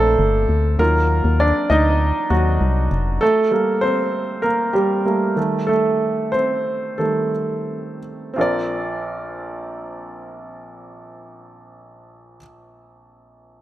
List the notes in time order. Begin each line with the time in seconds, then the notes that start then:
Already playing: A#1 A3 A#3 C4 D4 A4 A#4 C5 D5
0.19 G1
0.49 D2
0.79 D#2 F#3 A#3 D#4 F4 A#4
1.24 D#2
1.40 D4 D5
1.70 D2 D#4 D#5
2.30 D#2 F#3 F#4
2.61 C2
2.91 F1
3.21 A3 A4
3.51 G3 A3 A#3
3.81 C4 C5
4.42 A#3 A#4
4.73 G3 G4
5.05 G3 A3 A#3
5.36 D#3 G3 A3
5.67 A3 A4
6.32 C4 C5
6.98 D#3 G3 A3 A4
8.34 A#1 C4 F4
8.39 A#4 D5